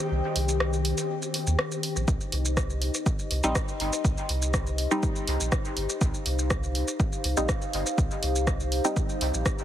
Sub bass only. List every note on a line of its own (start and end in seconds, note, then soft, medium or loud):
0.11 0.21 C2 loud
0.36 0.93 C2 medium
1.47 1.56 D#2 loud
1.96 2.05 A#1 medium
2.08 2.18 C2 loud
2.32 2.90 C2 medium
3.31 3.41 C2 medium
3.44 3.53 A#1 loud
3.80 3.90 G1 medium
4.05 4.14 C2 loud
4.29 4.86 C2 medium
5.27 5.37 C2 medium
5.40 5.49 A#1 loud
5.77 5.86 G1 medium
6.01 6.11 C2 loud
6.26 6.83 C2 medium
7.24 7.34 C2 medium
7.37 7.46 A#1 loud
7.74 7.83 G1 medium
7.98 8.08 C2 loud
8.23 8.80 C2 medium
9.21 9.31 C2 medium
9.34 9.43 A#1 loud